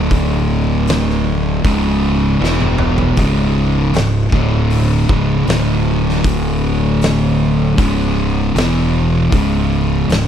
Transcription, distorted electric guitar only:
0, 0, Header, 1, 2, 480
1, 0, Start_track
1, 0, Tempo, 767263
1, 69, Time_signature, 4, 2, 24, 8
1, 6429, End_track
2, 0, Start_track
2, 0, Title_t, "Distorted electric guitar"
2, 0, Program_c, 0, 30
2, 0, Note_on_c, 0, 38, 86
2, 0, Note_on_c, 0, 45, 98
2, 0, Note_on_c, 0, 50, 100
2, 1024, Note_off_c, 0, 38, 0
2, 1027, Note_off_c, 0, 45, 0
2, 1027, Note_off_c, 0, 50, 0
2, 1029, Note_on_c, 0, 37, 84
2, 1036, Note_on_c, 0, 44, 89
2, 1037, Note_on_c, 0, 49, 96
2, 1500, Note_off_c, 0, 37, 0
2, 1502, Note_on_c, 0, 40, 99
2, 1505, Note_off_c, 0, 44, 0
2, 1505, Note_off_c, 0, 49, 0
2, 1508, Note_on_c, 0, 47, 92
2, 1508, Note_on_c, 0, 52, 95
2, 1980, Note_off_c, 0, 40, 0
2, 1983, Note_off_c, 0, 47, 0
2, 1983, Note_off_c, 0, 52, 0
2, 1987, Note_on_c, 0, 37, 87
2, 1994, Note_on_c, 0, 44, 88
2, 1995, Note_on_c, 0, 49, 99
2, 2461, Note_off_c, 0, 37, 0
2, 2462, Note_off_c, 0, 44, 0
2, 2467, Note_off_c, 0, 49, 0
2, 2468, Note_on_c, 0, 37, 68
2, 2469, Note_on_c, 0, 44, 65
2, 2662, Note_off_c, 0, 37, 0
2, 2663, Note_off_c, 0, 44, 0
2, 2705, Note_on_c, 0, 38, 89
2, 2709, Note_on_c, 0, 45, 89
2, 2712, Note_on_c, 0, 50, 94
2, 3180, Note_off_c, 0, 38, 0
2, 3182, Note_on_c, 0, 37, 99
2, 3183, Note_off_c, 0, 45, 0
2, 3185, Note_off_c, 0, 50, 0
2, 3187, Note_on_c, 0, 44, 96
2, 3192, Note_on_c, 0, 49, 96
2, 3412, Note_off_c, 0, 37, 0
2, 3415, Note_on_c, 0, 38, 92
2, 3417, Note_off_c, 0, 44, 0
2, 3420, Note_on_c, 0, 45, 98
2, 3421, Note_off_c, 0, 49, 0
2, 3423, Note_on_c, 0, 50, 105
2, 4856, Note_off_c, 0, 38, 0
2, 4859, Note_off_c, 0, 45, 0
2, 4860, Note_off_c, 0, 50, 0
2, 4863, Note_on_c, 0, 37, 81
2, 4866, Note_on_c, 0, 44, 97
2, 4872, Note_on_c, 0, 49, 109
2, 5340, Note_off_c, 0, 37, 0
2, 5342, Note_off_c, 0, 44, 0
2, 5345, Note_off_c, 0, 49, 0
2, 5347, Note_on_c, 0, 40, 87
2, 5354, Note_on_c, 0, 47, 91
2, 5356, Note_on_c, 0, 52, 106
2, 5823, Note_off_c, 0, 40, 0
2, 5826, Note_off_c, 0, 47, 0
2, 5827, Note_off_c, 0, 52, 0
2, 5828, Note_on_c, 0, 37, 90
2, 5831, Note_on_c, 0, 44, 93
2, 5836, Note_on_c, 0, 49, 98
2, 6303, Note_off_c, 0, 37, 0
2, 6305, Note_off_c, 0, 44, 0
2, 6307, Note_off_c, 0, 49, 0
2, 6313, Note_on_c, 0, 37, 58
2, 6315, Note_on_c, 0, 44, 65
2, 6429, Note_off_c, 0, 37, 0
2, 6429, Note_off_c, 0, 44, 0
2, 6429, End_track
0, 0, End_of_file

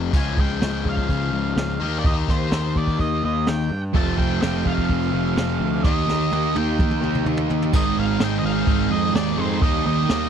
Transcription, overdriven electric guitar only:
0, 0, Header, 1, 2, 480
1, 0, Start_track
1, 0, Tempo, 473934
1, 139, Time_signature, 4, 2, 24, 8
1, 10424, End_track
2, 0, Start_track
2, 0, Title_t, "Overdriven electric guitar"
2, 0, Program_c, 0, 29
2, 0, Note_on_c, 0, 41, 75
2, 0, Note_on_c, 0, 48, 90
2, 0, Note_on_c, 0, 53, 93
2, 114, Note_off_c, 0, 48, 0
2, 118, Note_on_c, 0, 49, 90
2, 119, Note_off_c, 0, 53, 0
2, 130, Note_off_c, 0, 41, 0
2, 131, Note_on_c, 0, 53, 88
2, 139, Note_on_c, 0, 56, 93
2, 146, Note_on_c, 0, 61, 86
2, 154, Note_on_c, 0, 65, 85
2, 1803, Note_off_c, 0, 49, 0
2, 1810, Note_off_c, 0, 53, 0
2, 1814, Note_off_c, 0, 56, 0
2, 1818, Note_off_c, 0, 61, 0
2, 1820, Note_on_c, 0, 51, 83
2, 1822, Note_off_c, 0, 65, 0
2, 1835, Note_on_c, 0, 58, 87
2, 1844, Note_on_c, 0, 63, 94
2, 1851, Note_on_c, 0, 67, 105
2, 3736, Note_off_c, 0, 51, 0
2, 3743, Note_off_c, 0, 58, 0
2, 3748, Note_off_c, 0, 63, 0
2, 3751, Note_off_c, 0, 67, 0
2, 3990, Note_on_c, 0, 41, 87
2, 3999, Note_on_c, 0, 48, 89
2, 4004, Note_on_c, 0, 53, 91
2, 4008, Note_on_c, 0, 57, 89
2, 4015, Note_on_c, 0, 60, 96
2, 4021, Note_on_c, 0, 65, 107
2, 5900, Note_off_c, 0, 41, 0
2, 5905, Note_off_c, 0, 48, 0
2, 5907, Note_off_c, 0, 53, 0
2, 5909, Note_off_c, 0, 57, 0
2, 5913, Note_off_c, 0, 60, 0
2, 5916, Note_off_c, 0, 65, 0
2, 5921, Note_on_c, 0, 51, 86
2, 5935, Note_on_c, 0, 58, 92
2, 5944, Note_on_c, 0, 63, 97
2, 5959, Note_on_c, 0, 67, 107
2, 7821, Note_off_c, 0, 51, 0
2, 7829, Note_off_c, 0, 58, 0
2, 7833, Note_off_c, 0, 63, 0
2, 7833, Note_on_c, 0, 44, 99
2, 7840, Note_on_c, 0, 51, 95
2, 7841, Note_off_c, 0, 67, 0
2, 7847, Note_on_c, 0, 56, 96
2, 7853, Note_on_c, 0, 60, 103
2, 7856, Note_on_c, 0, 63, 105
2, 7866, Note_on_c, 0, 68, 111
2, 8293, Note_off_c, 0, 56, 0
2, 8305, Note_on_c, 0, 56, 77
2, 8307, Note_off_c, 0, 60, 0
2, 8319, Note_on_c, 0, 60, 80
2, 8323, Note_off_c, 0, 68, 0
2, 8327, Note_off_c, 0, 63, 0
2, 8331, Note_on_c, 0, 63, 85
2, 8335, Note_on_c, 0, 68, 77
2, 8542, Note_off_c, 0, 68, 0
2, 8550, Note_off_c, 0, 44, 0
2, 8554, Note_off_c, 0, 51, 0
2, 8554, Note_off_c, 0, 63, 0
2, 8554, Note_on_c, 0, 68, 80
2, 8562, Note_off_c, 0, 60, 0
2, 8566, Note_on_c, 0, 63, 65
2, 8571, Note_off_c, 0, 56, 0
2, 8574, Note_on_c, 0, 60, 64
2, 8583, Note_on_c, 0, 56, 62
2, 8768, Note_off_c, 0, 56, 0
2, 8780, Note_on_c, 0, 56, 71
2, 8784, Note_off_c, 0, 60, 0
2, 8795, Note_off_c, 0, 63, 0
2, 8796, Note_on_c, 0, 60, 82
2, 8802, Note_off_c, 0, 68, 0
2, 8807, Note_on_c, 0, 63, 84
2, 8814, Note_on_c, 0, 68, 86
2, 9009, Note_off_c, 0, 68, 0
2, 9021, Note_on_c, 0, 68, 75
2, 9029, Note_off_c, 0, 63, 0
2, 9037, Note_off_c, 0, 60, 0
2, 9041, Note_off_c, 0, 56, 0
2, 9041, Note_on_c, 0, 63, 72
2, 9050, Note_on_c, 0, 60, 63
2, 9053, Note_on_c, 0, 56, 61
2, 9267, Note_on_c, 0, 44, 91
2, 9269, Note_off_c, 0, 56, 0
2, 9269, Note_on_c, 0, 51, 101
2, 9270, Note_off_c, 0, 60, 0
2, 9278, Note_off_c, 0, 63, 0
2, 9281, Note_on_c, 0, 56, 94
2, 9283, Note_on_c, 0, 60, 95
2, 9284, Note_off_c, 0, 68, 0
2, 9290, Note_on_c, 0, 63, 105
2, 9296, Note_on_c, 0, 68, 112
2, 9729, Note_off_c, 0, 44, 0
2, 9730, Note_off_c, 0, 51, 0
2, 9736, Note_off_c, 0, 56, 0
2, 9737, Note_off_c, 0, 60, 0
2, 9741, Note_off_c, 0, 63, 0
2, 9744, Note_off_c, 0, 68, 0
2, 9744, Note_on_c, 0, 51, 96
2, 9750, Note_on_c, 0, 55, 93
2, 9764, Note_on_c, 0, 58, 101
2, 9770, Note_on_c, 0, 63, 111
2, 9775, Note_on_c, 0, 67, 113
2, 10212, Note_off_c, 0, 55, 0
2, 10224, Note_on_c, 0, 55, 82
2, 10226, Note_off_c, 0, 58, 0
2, 10236, Note_off_c, 0, 63, 0
2, 10239, Note_on_c, 0, 58, 79
2, 10245, Note_off_c, 0, 67, 0
2, 10248, Note_on_c, 0, 63, 78
2, 10257, Note_on_c, 0, 67, 84
2, 10424, Note_off_c, 0, 51, 0
2, 10424, Note_off_c, 0, 55, 0
2, 10424, Note_off_c, 0, 58, 0
2, 10424, Note_off_c, 0, 63, 0
2, 10424, Note_off_c, 0, 67, 0
2, 10424, End_track
0, 0, End_of_file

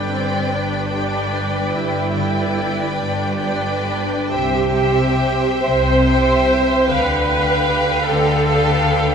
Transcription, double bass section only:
0, 0, Header, 1, 2, 480
1, 0, Start_track
1, 0, Key_signature, 1, "major"
1, 0, Tempo, 811908
1, 1503, Tempo, 878477
1, 2461, Time_signature, 12, 3, 24, 8
1, 3423, Tempo, 804290
1, 5268, End_track
2, 0, Start_track
2, 0, Title_t, "Double bass section"
2, 0, Program_c, 0, 48
2, 0, Note_on_c, 0, 31, 39
2, 218, Note_off_c, 0, 31, 0
2, 303, Note_on_c, 0, 31, 42
2, 938, Note_off_c, 0, 31, 0
2, 1025, Note_on_c, 0, 31, 43
2, 1650, Note_off_c, 0, 31, 0
2, 1732, Note_on_c, 0, 31, 50
2, 2376, Note_off_c, 0, 31, 0
2, 2460, Note_on_c, 0, 36, 48
2, 3110, Note_off_c, 0, 36, 0
2, 3193, Note_on_c, 0, 36, 53
2, 3828, Note_off_c, 0, 36, 0
2, 3913, Note_on_c, 0, 38, 53
2, 4551, Note_off_c, 0, 38, 0
2, 4637, Note_on_c, 0, 38, 54
2, 5260, Note_off_c, 0, 38, 0
2, 5268, End_track
0, 0, End_of_file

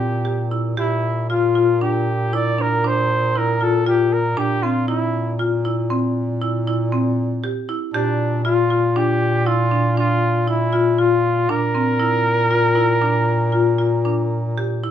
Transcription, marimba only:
0, 0, Header, 1, 2, 480
1, 0, Start_track
1, 0, Tempo, 518135
1, 719, Time_signature, 7, 2, 24, 8
1, 2632, Tempo, 508906
1, 12232, Tempo, 520382
1, 13974, End_track
2, 0, Start_track
2, 0, Title_t, "Marimba"
2, 0, Program_c, 0, 12
2, 232, Note_on_c, 0, 67, 60
2, 356, Note_off_c, 0, 67, 0
2, 476, Note_on_c, 0, 64, 52
2, 600, Note_off_c, 0, 64, 0
2, 717, Note_on_c, 0, 67, 71
2, 963, Note_off_c, 0, 67, 0
2, 1203, Note_on_c, 0, 65, 60
2, 1324, Note_off_c, 0, 65, 0
2, 1440, Note_on_c, 0, 65, 56
2, 1562, Note_off_c, 0, 65, 0
2, 1681, Note_on_c, 0, 62, 60
2, 1924, Note_off_c, 0, 62, 0
2, 2161, Note_on_c, 0, 64, 60
2, 2281, Note_off_c, 0, 64, 0
2, 2395, Note_on_c, 0, 62, 54
2, 2516, Note_off_c, 0, 62, 0
2, 2636, Note_on_c, 0, 62, 60
2, 2882, Note_off_c, 0, 62, 0
2, 3117, Note_on_c, 0, 64, 57
2, 3240, Note_off_c, 0, 64, 0
2, 3354, Note_on_c, 0, 65, 58
2, 3478, Note_off_c, 0, 65, 0
2, 3597, Note_on_c, 0, 65, 65
2, 3843, Note_off_c, 0, 65, 0
2, 4075, Note_on_c, 0, 62, 73
2, 4199, Note_off_c, 0, 62, 0
2, 4322, Note_on_c, 0, 60, 57
2, 4445, Note_off_c, 0, 60, 0
2, 4557, Note_on_c, 0, 64, 61
2, 4805, Note_off_c, 0, 64, 0
2, 5040, Note_on_c, 0, 65, 58
2, 5164, Note_off_c, 0, 65, 0
2, 5281, Note_on_c, 0, 64, 58
2, 5406, Note_off_c, 0, 64, 0
2, 5520, Note_on_c, 0, 60, 62
2, 5767, Note_off_c, 0, 60, 0
2, 6003, Note_on_c, 0, 64, 63
2, 6127, Note_off_c, 0, 64, 0
2, 6247, Note_on_c, 0, 64, 65
2, 6370, Note_off_c, 0, 64, 0
2, 6482, Note_on_c, 0, 60, 62
2, 6729, Note_off_c, 0, 60, 0
2, 6966, Note_on_c, 0, 67, 63
2, 7088, Note_off_c, 0, 67, 0
2, 7204, Note_on_c, 0, 64, 59
2, 7326, Note_off_c, 0, 64, 0
2, 7444, Note_on_c, 0, 67, 76
2, 7687, Note_off_c, 0, 67, 0
2, 7921, Note_on_c, 0, 65, 66
2, 8042, Note_off_c, 0, 65, 0
2, 8162, Note_on_c, 0, 65, 62
2, 8283, Note_off_c, 0, 65, 0
2, 8404, Note_on_c, 0, 62, 64
2, 8646, Note_off_c, 0, 62, 0
2, 8879, Note_on_c, 0, 64, 63
2, 9000, Note_off_c, 0, 64, 0
2, 9115, Note_on_c, 0, 62, 61
2, 9237, Note_off_c, 0, 62, 0
2, 9358, Note_on_c, 0, 62, 66
2, 9601, Note_off_c, 0, 62, 0
2, 9833, Note_on_c, 0, 64, 56
2, 9955, Note_off_c, 0, 64, 0
2, 10069, Note_on_c, 0, 65, 61
2, 10192, Note_off_c, 0, 65, 0
2, 10311, Note_on_c, 0, 65, 65
2, 10556, Note_off_c, 0, 65, 0
2, 10791, Note_on_c, 0, 62, 74
2, 10913, Note_off_c, 0, 62, 0
2, 11032, Note_on_c, 0, 60, 58
2, 11154, Note_off_c, 0, 60, 0
2, 11266, Note_on_c, 0, 64, 61
2, 11513, Note_off_c, 0, 64, 0
2, 11749, Note_on_c, 0, 65, 60
2, 11872, Note_off_c, 0, 65, 0
2, 11982, Note_on_c, 0, 64, 57
2, 12107, Note_off_c, 0, 64, 0
2, 12229, Note_on_c, 0, 62, 57
2, 12472, Note_off_c, 0, 62, 0
2, 12697, Note_on_c, 0, 65, 60
2, 12821, Note_off_c, 0, 65, 0
2, 12937, Note_on_c, 0, 65, 56
2, 13063, Note_off_c, 0, 65, 0
2, 13183, Note_on_c, 0, 62, 53
2, 13432, Note_off_c, 0, 62, 0
2, 13667, Note_on_c, 0, 67, 61
2, 13791, Note_off_c, 0, 67, 0
2, 13908, Note_on_c, 0, 64, 52
2, 13974, Note_off_c, 0, 64, 0
2, 13974, End_track
0, 0, End_of_file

